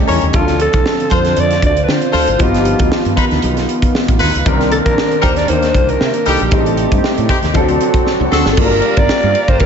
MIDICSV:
0, 0, Header, 1, 8, 480
1, 0, Start_track
1, 0, Key_signature, -2, "minor"
1, 0, Tempo, 514580
1, 319, Time_signature, 4, 2, 24, 8
1, 9010, End_track
2, 0, Start_track
2, 0, Title_t, "Alto saxophone"
2, 0, Program_c, 0, 65
2, 330, Note_on_c, 0, 65, 87
2, 548, Note_off_c, 0, 65, 0
2, 575, Note_on_c, 0, 69, 100
2, 1062, Note_on_c, 0, 72, 107
2, 1076, Note_off_c, 0, 69, 0
2, 1306, Note_on_c, 0, 74, 121
2, 1320, Note_off_c, 0, 72, 0
2, 1533, Note_off_c, 0, 74, 0
2, 1550, Note_on_c, 0, 74, 98
2, 1712, Note_on_c, 0, 71, 73
2, 1726, Note_off_c, 0, 74, 0
2, 1799, Note_on_c, 0, 72, 105
2, 1813, Note_off_c, 0, 71, 0
2, 2267, Note_on_c, 0, 65, 87
2, 2281, Note_off_c, 0, 72, 0
2, 2974, Note_off_c, 0, 65, 0
2, 4403, Note_on_c, 0, 69, 88
2, 4461, Note_off_c, 0, 69, 0
2, 4530, Note_on_c, 0, 70, 102
2, 4886, Note_on_c, 0, 72, 100
2, 4900, Note_off_c, 0, 70, 0
2, 5010, Note_on_c, 0, 74, 107
2, 5024, Note_off_c, 0, 72, 0
2, 5125, Note_on_c, 0, 72, 104
2, 5139, Note_off_c, 0, 74, 0
2, 5502, Note_on_c, 0, 70, 96
2, 5516, Note_off_c, 0, 72, 0
2, 5854, Note_on_c, 0, 69, 82
2, 5868, Note_off_c, 0, 70, 0
2, 5988, Note_on_c, 0, 67, 82
2, 6002, Note_off_c, 0, 69, 0
2, 6701, Note_off_c, 0, 67, 0
2, 7950, Note_on_c, 0, 69, 80
2, 8014, Note_on_c, 0, 70, 108
2, 8028, Note_off_c, 0, 69, 0
2, 8375, Note_on_c, 0, 74, 116
2, 8389, Note_off_c, 0, 70, 0
2, 8854, Note_on_c, 0, 72, 94
2, 8868, Note_off_c, 0, 74, 0
2, 8949, Note_on_c, 0, 70, 108
2, 8963, Note_off_c, 0, 72, 0
2, 9010, Note_off_c, 0, 70, 0
2, 9010, End_track
3, 0, Start_track
3, 0, Title_t, "Horn section"
3, 0, Program_c, 1, 61
3, 71, Note_on_c, 1, 70, 89
3, 72, Note_on_c, 1, 61, 93
3, 77, Note_on_c, 1, 73, 91
3, 227, Note_off_c, 1, 61, 0
3, 227, Note_off_c, 1, 70, 0
3, 231, Note_off_c, 1, 73, 0
3, 1029, Note_on_c, 1, 69, 100
3, 1030, Note_on_c, 1, 65, 96
3, 1030, Note_on_c, 1, 72, 107
3, 1115, Note_off_c, 1, 65, 0
3, 1115, Note_off_c, 1, 69, 0
3, 1116, Note_off_c, 1, 72, 0
3, 1982, Note_on_c, 1, 69, 88
3, 1983, Note_on_c, 1, 72, 103
3, 1984, Note_on_c, 1, 65, 100
3, 2141, Note_off_c, 1, 69, 0
3, 2142, Note_off_c, 1, 72, 0
3, 2143, Note_off_c, 1, 65, 0
3, 2953, Note_on_c, 1, 65, 95
3, 2958, Note_on_c, 1, 63, 91
3, 2958, Note_on_c, 1, 71, 99
3, 3038, Note_off_c, 1, 65, 0
3, 3042, Note_off_c, 1, 63, 0
3, 3042, Note_off_c, 1, 71, 0
3, 3915, Note_on_c, 1, 71, 109
3, 3922, Note_on_c, 1, 63, 89
3, 3922, Note_on_c, 1, 65, 88
3, 4070, Note_off_c, 1, 71, 0
3, 4075, Note_off_c, 1, 63, 0
3, 4075, Note_off_c, 1, 65, 0
3, 4864, Note_on_c, 1, 70, 110
3, 4865, Note_on_c, 1, 63, 104
3, 4867, Note_on_c, 1, 67, 100
3, 4952, Note_off_c, 1, 70, 0
3, 4953, Note_off_c, 1, 63, 0
3, 4955, Note_off_c, 1, 67, 0
3, 5841, Note_on_c, 1, 67, 113
3, 5842, Note_on_c, 1, 63, 86
3, 5843, Note_on_c, 1, 55, 96
3, 5995, Note_off_c, 1, 63, 0
3, 5995, Note_off_c, 1, 67, 0
3, 5996, Note_off_c, 1, 55, 0
3, 6807, Note_on_c, 1, 60, 104
3, 6809, Note_on_c, 1, 63, 90
3, 6811, Note_on_c, 1, 67, 109
3, 6888, Note_off_c, 1, 60, 0
3, 6890, Note_off_c, 1, 63, 0
3, 6891, Note_off_c, 1, 67, 0
3, 7751, Note_on_c, 1, 66, 97
3, 7752, Note_on_c, 1, 62, 95
3, 7754, Note_on_c, 1, 69, 110
3, 7908, Note_off_c, 1, 66, 0
3, 7909, Note_off_c, 1, 62, 0
3, 7909, Note_off_c, 1, 69, 0
3, 9010, End_track
4, 0, Start_track
4, 0, Title_t, "Grand piano"
4, 0, Program_c, 2, 0
4, 0, Control_c, 2, 64, 127
4, 0, Note_on_c, 2, 55, 82
4, 0, Note_on_c, 2, 61, 76
4, 0, Note_on_c, 2, 63, 76
4, 0, Note_on_c, 2, 69, 87
4, 298, Note_off_c, 2, 61, 0
4, 304, Note_off_c, 2, 63, 0
4, 307, Note_off_c, 2, 69, 0
4, 307, Note_on_c, 2, 53, 56
4, 315, Note_on_c, 2, 60, 55
4, 324, Note_on_c, 2, 62, 52
4, 325, Note_off_c, 2, 55, 0
4, 329, Note_on_c, 2, 69, 71
4, 331, Control_c, 2, 64, 0
4, 483, Control_c, 2, 64, 127
4, 2197, Note_off_c, 2, 53, 0
4, 2201, Note_off_c, 2, 60, 0
4, 2206, Note_off_c, 2, 62, 0
4, 2208, Note_off_c, 2, 69, 0
4, 2223, Note_on_c, 2, 53, 63
4, 2227, Note_on_c, 2, 59, 61
4, 2240, Note_on_c, 2, 63, 65
4, 2246, Note_on_c, 2, 67, 67
4, 2253, Control_c, 2, 64, 0
4, 2421, Control_c, 2, 64, 127
4, 4116, Note_off_c, 2, 53, 0
4, 4118, Note_off_c, 2, 59, 0
4, 4125, Note_off_c, 2, 63, 0
4, 4128, Note_off_c, 2, 67, 0
4, 4150, Note_on_c, 2, 51, 73
4, 4158, Note_on_c, 2, 60, 67
4, 4166, Note_on_c, 2, 62, 71
4, 4173, Note_on_c, 2, 70, 87
4, 4175, Control_c, 2, 64, 0
4, 4325, Control_c, 2, 64, 127
4, 6040, Note_off_c, 2, 51, 0
4, 6044, Note_off_c, 2, 60, 0
4, 6048, Note_off_c, 2, 62, 0
4, 6051, Note_off_c, 2, 70, 0
4, 6073, Note_on_c, 2, 55, 67
4, 6080, Note_on_c, 2, 60, 62
4, 6092, Note_on_c, 2, 63, 68
4, 6096, Note_on_c, 2, 68, 55
4, 6097, Control_c, 2, 64, 0
4, 6152, Note_off_c, 2, 68, 0
4, 6157, Note_on_c, 2, 69, 67
4, 6276, Control_c, 2, 64, 127
4, 7019, Note_off_c, 2, 55, 0
4, 7023, Note_off_c, 2, 60, 0
4, 7028, Note_off_c, 2, 63, 0
4, 7029, Note_on_c, 2, 53, 73
4, 7039, Note_on_c, 2, 60, 82
4, 7041, Note_off_c, 2, 69, 0
4, 7045, Note_on_c, 2, 62, 84
4, 7055, Control_c, 2, 64, 0
4, 7055, Note_on_c, 2, 69, 102
4, 7086, Note_on_c, 2, 54, 88
4, 7098, Note_off_c, 2, 53, 0
4, 7188, Control_c, 2, 64, 127
4, 7981, Note_off_c, 2, 60, 0
4, 7984, Note_off_c, 2, 62, 0
4, 7989, Note_off_c, 2, 69, 0
4, 7994, Note_on_c, 2, 55, 63
4, 8000, Note_on_c, 2, 58, 63
4, 8005, Note_off_c, 2, 54, 0
4, 8007, Note_on_c, 2, 62, 65
4, 8009, Note_on_c, 2, 65, 63
4, 8016, Control_c, 2, 64, 0
4, 8016, Note_on_c, 2, 69, 60
4, 8071, Note_on_c, 2, 70, 72
4, 8072, Note_off_c, 2, 69, 0
4, 8159, Control_c, 2, 64, 127
4, 9010, Note_off_c, 2, 55, 0
4, 9010, Note_off_c, 2, 58, 0
4, 9010, Note_off_c, 2, 62, 0
4, 9010, Note_off_c, 2, 65, 0
4, 9010, Note_off_c, 2, 70, 0
4, 9010, End_track
5, 0, Start_track
5, 0, Title_t, "Analog synth pad"
5, 0, Program_c, 3, 89
5, 0, Note_on_c, 3, 49, 78
5, 0, Note_on_c, 3, 57, 74
5, 0, Note_on_c, 3, 67, 81
5, 308, Note_off_c, 3, 49, 0
5, 309, Note_off_c, 3, 57, 0
5, 313, Note_off_c, 3, 67, 0
5, 317, Note_on_c, 3, 60, 73
5, 318, Note_on_c, 3, 50, 88
5, 318, Note_on_c, 3, 65, 90
5, 2220, Note_off_c, 3, 60, 0
5, 2221, Note_off_c, 3, 50, 0
5, 2235, Note_on_c, 3, 59, 72
5, 2236, Note_on_c, 3, 51, 75
5, 4124, Note_off_c, 3, 65, 0
5, 4140, Note_off_c, 3, 59, 0
5, 4141, Note_off_c, 3, 51, 0
5, 4152, Note_on_c, 3, 51, 98
5, 4157, Note_on_c, 3, 62, 80
5, 4161, Note_on_c, 3, 58, 76
5, 6059, Note_off_c, 3, 51, 0
5, 6062, Note_off_c, 3, 62, 0
5, 6064, Note_off_c, 3, 58, 0
5, 6084, Note_on_c, 3, 57, 70
5, 6088, Note_on_c, 3, 48, 82
5, 6088, Note_on_c, 3, 67, 84
5, 7034, Note_off_c, 3, 57, 0
5, 7036, Note_off_c, 3, 48, 0
5, 7036, Note_off_c, 3, 67, 0
5, 7038, Note_on_c, 3, 66, 89
5, 7042, Note_on_c, 3, 60, 70
5, 7044, Note_on_c, 3, 50, 77
5, 7990, Note_off_c, 3, 66, 0
5, 7992, Note_off_c, 3, 60, 0
5, 7993, Note_off_c, 3, 50, 0
5, 7998, Note_on_c, 3, 77, 77
5, 7999, Note_on_c, 3, 82, 94
5, 8002, Note_on_c, 3, 67, 84
5, 9010, Note_off_c, 3, 67, 0
5, 9010, Note_off_c, 3, 77, 0
5, 9010, Note_off_c, 3, 82, 0
5, 9010, End_track
6, 0, Start_track
6, 0, Title_t, "Fretless electric bass"
6, 0, Program_c, 4, 35
6, 75, Note_on_c, 4, 40, 86
6, 184, Note_off_c, 4, 40, 0
6, 207, Note_on_c, 4, 39, 91
6, 299, Note_off_c, 4, 39, 0
6, 315, Note_on_c, 4, 38, 97
6, 623, Note_off_c, 4, 38, 0
6, 688, Note_on_c, 4, 36, 69
6, 780, Note_off_c, 4, 36, 0
6, 1038, Note_on_c, 4, 41, 88
6, 1238, Note_off_c, 4, 41, 0
6, 1276, Note_on_c, 4, 41, 90
6, 1477, Note_off_c, 4, 41, 0
6, 1516, Note_on_c, 4, 38, 83
6, 1717, Note_off_c, 4, 38, 0
6, 1748, Note_on_c, 4, 50, 87
6, 1860, Note_off_c, 4, 50, 0
6, 1990, Note_on_c, 4, 38, 97
6, 2102, Note_off_c, 4, 38, 0
6, 2122, Note_on_c, 4, 32, 87
6, 2217, Note_off_c, 4, 32, 0
6, 2237, Note_on_c, 4, 31, 97
6, 2545, Note_off_c, 4, 31, 0
6, 2608, Note_on_c, 4, 38, 89
6, 2701, Note_off_c, 4, 38, 0
6, 2844, Note_on_c, 4, 43, 89
6, 2938, Note_off_c, 4, 43, 0
6, 3091, Note_on_c, 4, 38, 84
6, 3183, Note_off_c, 4, 38, 0
6, 3202, Note_on_c, 4, 35, 99
6, 3401, Note_off_c, 4, 35, 0
6, 3812, Note_on_c, 4, 33, 97
6, 3904, Note_off_c, 4, 33, 0
6, 3923, Note_on_c, 4, 38, 96
6, 4030, Note_off_c, 4, 38, 0
6, 4057, Note_on_c, 4, 37, 80
6, 4146, Note_off_c, 4, 37, 0
6, 4160, Note_on_c, 4, 36, 93
6, 4468, Note_off_c, 4, 36, 0
6, 4531, Note_on_c, 4, 34, 76
6, 4623, Note_off_c, 4, 34, 0
6, 4880, Note_on_c, 4, 39, 94
6, 5080, Note_off_c, 4, 39, 0
6, 5121, Note_on_c, 4, 39, 97
6, 5321, Note_off_c, 4, 39, 0
6, 5358, Note_on_c, 4, 36, 79
6, 5559, Note_off_c, 4, 36, 0
6, 5604, Note_on_c, 4, 48, 101
6, 5711, Note_off_c, 4, 48, 0
6, 5844, Note_on_c, 4, 36, 82
6, 5951, Note_off_c, 4, 36, 0
6, 5976, Note_on_c, 4, 34, 81
6, 6066, Note_off_c, 4, 34, 0
6, 6084, Note_on_c, 4, 33, 109
6, 6390, Note_off_c, 4, 33, 0
6, 6451, Note_on_c, 4, 43, 94
6, 6543, Note_off_c, 4, 43, 0
6, 6693, Note_on_c, 4, 45, 93
6, 6785, Note_off_c, 4, 45, 0
6, 6928, Note_on_c, 4, 39, 82
6, 7021, Note_off_c, 4, 39, 0
6, 7042, Note_on_c, 4, 38, 95
6, 7241, Note_off_c, 4, 38, 0
6, 7647, Note_on_c, 4, 36, 109
6, 7741, Note_off_c, 4, 36, 0
6, 7755, Note_on_c, 4, 38, 93
6, 7865, Note_off_c, 4, 38, 0
6, 7878, Note_on_c, 4, 32, 85
6, 7975, Note_off_c, 4, 32, 0
6, 8002, Note_on_c, 4, 31, 115
6, 8201, Note_off_c, 4, 31, 0
6, 8370, Note_on_c, 4, 31, 101
6, 8462, Note_off_c, 4, 31, 0
6, 8608, Note_on_c, 4, 43, 100
6, 8701, Note_off_c, 4, 43, 0
6, 8847, Note_on_c, 4, 31, 84
6, 8940, Note_off_c, 4, 31, 0
6, 8957, Note_on_c, 4, 43, 123
6, 9010, Note_off_c, 4, 43, 0
6, 9010, End_track
7, 0, Start_track
7, 0, Title_t, "Muted fretless electric bass strokes"
7, 2723, Note_on_c, 9, 29, 46
7, 2817, Note_off_c, 9, 29, 0
7, 6561, Note_on_c, 9, 29, 44
7, 6655, Note_off_c, 9, 29, 0
7, 8488, Note_on_c, 9, 29, 53
7, 8581, Note_off_c, 9, 29, 0
7, 9010, End_track
8, 0, Start_track
8, 0, Title_t, "Drums"
8, 77, Note_on_c, 9, 46, 69
8, 84, Note_on_c, 9, 38, 33
8, 170, Note_off_c, 9, 46, 0
8, 177, Note_off_c, 9, 38, 0
8, 202, Note_on_c, 9, 42, 54
8, 296, Note_off_c, 9, 42, 0
8, 310, Note_on_c, 9, 42, 85
8, 316, Note_on_c, 9, 36, 121
8, 403, Note_off_c, 9, 42, 0
8, 409, Note_off_c, 9, 36, 0
8, 447, Note_on_c, 9, 38, 37
8, 447, Note_on_c, 9, 42, 51
8, 540, Note_off_c, 9, 42, 0
8, 541, Note_off_c, 9, 38, 0
8, 556, Note_on_c, 9, 42, 79
8, 650, Note_off_c, 9, 42, 0
8, 680, Note_on_c, 9, 42, 63
8, 688, Note_on_c, 9, 36, 94
8, 774, Note_off_c, 9, 42, 0
8, 781, Note_off_c, 9, 36, 0
8, 800, Note_on_c, 9, 38, 113
8, 893, Note_off_c, 9, 38, 0
8, 932, Note_on_c, 9, 42, 46
8, 1025, Note_off_c, 9, 42, 0
8, 1037, Note_on_c, 9, 36, 86
8, 1037, Note_on_c, 9, 42, 73
8, 1131, Note_off_c, 9, 36, 0
8, 1131, Note_off_c, 9, 42, 0
8, 1162, Note_on_c, 9, 42, 51
8, 1172, Note_on_c, 9, 38, 37
8, 1256, Note_off_c, 9, 42, 0
8, 1265, Note_off_c, 9, 38, 0
8, 1273, Note_on_c, 9, 42, 85
8, 1366, Note_off_c, 9, 42, 0
8, 1404, Note_on_c, 9, 42, 51
8, 1415, Note_on_c, 9, 38, 31
8, 1498, Note_off_c, 9, 42, 0
8, 1508, Note_off_c, 9, 38, 0
8, 1515, Note_on_c, 9, 36, 84
8, 1517, Note_on_c, 9, 42, 69
8, 1609, Note_off_c, 9, 36, 0
8, 1610, Note_off_c, 9, 42, 0
8, 1647, Note_on_c, 9, 42, 51
8, 1741, Note_off_c, 9, 42, 0
8, 1759, Note_on_c, 9, 38, 93
8, 1852, Note_off_c, 9, 38, 0
8, 1880, Note_on_c, 9, 42, 48
8, 1974, Note_off_c, 9, 42, 0
8, 1995, Note_on_c, 9, 46, 77
8, 2002, Note_on_c, 9, 38, 31
8, 2089, Note_off_c, 9, 46, 0
8, 2096, Note_off_c, 9, 38, 0
8, 2122, Note_on_c, 9, 42, 54
8, 2215, Note_off_c, 9, 42, 0
8, 2233, Note_on_c, 9, 42, 93
8, 2237, Note_on_c, 9, 36, 116
8, 2326, Note_off_c, 9, 42, 0
8, 2330, Note_off_c, 9, 36, 0
8, 2373, Note_on_c, 9, 42, 58
8, 2374, Note_on_c, 9, 38, 38
8, 2466, Note_off_c, 9, 42, 0
8, 2467, Note_off_c, 9, 38, 0
8, 2474, Note_on_c, 9, 42, 72
8, 2567, Note_off_c, 9, 42, 0
8, 2603, Note_on_c, 9, 42, 59
8, 2608, Note_on_c, 9, 36, 102
8, 2696, Note_off_c, 9, 42, 0
8, 2701, Note_off_c, 9, 36, 0
8, 2721, Note_on_c, 9, 38, 120
8, 2814, Note_off_c, 9, 38, 0
8, 2847, Note_on_c, 9, 42, 45
8, 2940, Note_off_c, 9, 42, 0
8, 2959, Note_on_c, 9, 36, 86
8, 2964, Note_on_c, 9, 42, 74
8, 3052, Note_off_c, 9, 36, 0
8, 3057, Note_off_c, 9, 42, 0
8, 3089, Note_on_c, 9, 42, 49
8, 3099, Note_on_c, 9, 38, 33
8, 3183, Note_off_c, 9, 42, 0
8, 3192, Note_off_c, 9, 38, 0
8, 3193, Note_on_c, 9, 42, 82
8, 3286, Note_off_c, 9, 42, 0
8, 3328, Note_on_c, 9, 42, 48
8, 3339, Note_on_c, 9, 38, 34
8, 3422, Note_off_c, 9, 42, 0
8, 3432, Note_off_c, 9, 38, 0
8, 3441, Note_on_c, 9, 42, 67
8, 3534, Note_off_c, 9, 42, 0
8, 3567, Note_on_c, 9, 36, 85
8, 3574, Note_on_c, 9, 42, 52
8, 3660, Note_off_c, 9, 36, 0
8, 3667, Note_off_c, 9, 42, 0
8, 3684, Note_on_c, 9, 38, 99
8, 3778, Note_off_c, 9, 38, 0
8, 3810, Note_on_c, 9, 36, 92
8, 3814, Note_on_c, 9, 42, 54
8, 3903, Note_off_c, 9, 36, 0
8, 3907, Note_off_c, 9, 42, 0
8, 3927, Note_on_c, 9, 46, 79
8, 3934, Note_on_c, 9, 38, 33
8, 4020, Note_off_c, 9, 46, 0
8, 4027, Note_off_c, 9, 38, 0
8, 4058, Note_on_c, 9, 42, 49
8, 4151, Note_off_c, 9, 42, 0
8, 4158, Note_on_c, 9, 42, 87
8, 4160, Note_on_c, 9, 36, 127
8, 4252, Note_off_c, 9, 42, 0
8, 4254, Note_off_c, 9, 36, 0
8, 4298, Note_on_c, 9, 42, 50
8, 4299, Note_on_c, 9, 38, 35
8, 4391, Note_off_c, 9, 42, 0
8, 4392, Note_off_c, 9, 38, 0
8, 4398, Note_on_c, 9, 42, 80
8, 4491, Note_off_c, 9, 42, 0
8, 4531, Note_on_c, 9, 42, 67
8, 4532, Note_on_c, 9, 36, 97
8, 4625, Note_off_c, 9, 36, 0
8, 4625, Note_off_c, 9, 42, 0
8, 4646, Note_on_c, 9, 38, 118
8, 4739, Note_off_c, 9, 38, 0
8, 4772, Note_on_c, 9, 42, 46
8, 4865, Note_off_c, 9, 42, 0
8, 4880, Note_on_c, 9, 36, 83
8, 4882, Note_on_c, 9, 42, 79
8, 4973, Note_off_c, 9, 36, 0
8, 4975, Note_off_c, 9, 42, 0
8, 5003, Note_on_c, 9, 42, 49
8, 5013, Note_on_c, 9, 38, 37
8, 5097, Note_off_c, 9, 42, 0
8, 5106, Note_off_c, 9, 38, 0
8, 5113, Note_on_c, 9, 42, 81
8, 5206, Note_off_c, 9, 42, 0
8, 5247, Note_on_c, 9, 42, 48
8, 5257, Note_on_c, 9, 38, 30
8, 5340, Note_off_c, 9, 42, 0
8, 5351, Note_off_c, 9, 38, 0
8, 5359, Note_on_c, 9, 36, 87
8, 5360, Note_on_c, 9, 42, 64
8, 5452, Note_off_c, 9, 36, 0
8, 5453, Note_off_c, 9, 42, 0
8, 5492, Note_on_c, 9, 42, 43
8, 5585, Note_off_c, 9, 42, 0
8, 5604, Note_on_c, 9, 38, 97
8, 5698, Note_off_c, 9, 38, 0
8, 5724, Note_on_c, 9, 42, 55
8, 5817, Note_off_c, 9, 42, 0
8, 5835, Note_on_c, 9, 46, 68
8, 5929, Note_off_c, 9, 46, 0
8, 5972, Note_on_c, 9, 42, 52
8, 6065, Note_off_c, 9, 42, 0
8, 6074, Note_on_c, 9, 42, 91
8, 6080, Note_on_c, 9, 36, 123
8, 6168, Note_off_c, 9, 42, 0
8, 6174, Note_off_c, 9, 36, 0
8, 6214, Note_on_c, 9, 42, 55
8, 6307, Note_off_c, 9, 42, 0
8, 6319, Note_on_c, 9, 42, 82
8, 6412, Note_off_c, 9, 42, 0
8, 6452, Note_on_c, 9, 42, 68
8, 6453, Note_on_c, 9, 36, 100
8, 6545, Note_off_c, 9, 42, 0
8, 6546, Note_off_c, 9, 36, 0
8, 6568, Note_on_c, 9, 38, 110
8, 6661, Note_off_c, 9, 38, 0
8, 6693, Note_on_c, 9, 42, 46
8, 6786, Note_off_c, 9, 42, 0
8, 6801, Note_on_c, 9, 36, 94
8, 6804, Note_on_c, 9, 42, 84
8, 6895, Note_off_c, 9, 36, 0
8, 6897, Note_off_c, 9, 42, 0
8, 6927, Note_on_c, 9, 42, 50
8, 6936, Note_on_c, 9, 38, 32
8, 7020, Note_off_c, 9, 42, 0
8, 7029, Note_off_c, 9, 38, 0
8, 7036, Note_on_c, 9, 42, 76
8, 7041, Note_on_c, 9, 36, 99
8, 7129, Note_off_c, 9, 42, 0
8, 7134, Note_off_c, 9, 36, 0
8, 7167, Note_on_c, 9, 42, 53
8, 7260, Note_off_c, 9, 42, 0
8, 7281, Note_on_c, 9, 42, 69
8, 7375, Note_off_c, 9, 42, 0
8, 7405, Note_on_c, 9, 36, 96
8, 7410, Note_on_c, 9, 42, 52
8, 7498, Note_off_c, 9, 36, 0
8, 7503, Note_off_c, 9, 42, 0
8, 7524, Note_on_c, 9, 38, 58
8, 7617, Note_off_c, 9, 38, 0
8, 7762, Note_on_c, 9, 38, 81
8, 7855, Note_off_c, 9, 38, 0
8, 7890, Note_on_c, 9, 38, 106
8, 7984, Note_off_c, 9, 38, 0
8, 7995, Note_on_c, 9, 49, 108
8, 7998, Note_on_c, 9, 36, 127
8, 8088, Note_off_c, 9, 49, 0
8, 8091, Note_off_c, 9, 36, 0
8, 8130, Note_on_c, 9, 51, 48
8, 8224, Note_off_c, 9, 51, 0
8, 8226, Note_on_c, 9, 51, 64
8, 8319, Note_off_c, 9, 51, 0
8, 8363, Note_on_c, 9, 51, 55
8, 8368, Note_on_c, 9, 36, 111
8, 8456, Note_off_c, 9, 51, 0
8, 8462, Note_off_c, 9, 36, 0
8, 8478, Note_on_c, 9, 51, 63
8, 8481, Note_on_c, 9, 38, 127
8, 8571, Note_off_c, 9, 51, 0
8, 8575, Note_off_c, 9, 38, 0
8, 8608, Note_on_c, 9, 51, 36
8, 8701, Note_off_c, 9, 51, 0
8, 8720, Note_on_c, 9, 51, 66
8, 8814, Note_off_c, 9, 51, 0
8, 8844, Note_on_c, 9, 51, 41
8, 8845, Note_on_c, 9, 36, 91
8, 8937, Note_off_c, 9, 51, 0
8, 8938, Note_off_c, 9, 36, 0
8, 8950, Note_on_c, 9, 51, 68
8, 8958, Note_on_c, 9, 36, 92
8, 9010, Note_off_c, 9, 36, 0
8, 9010, Note_off_c, 9, 51, 0
8, 9010, End_track
0, 0, End_of_file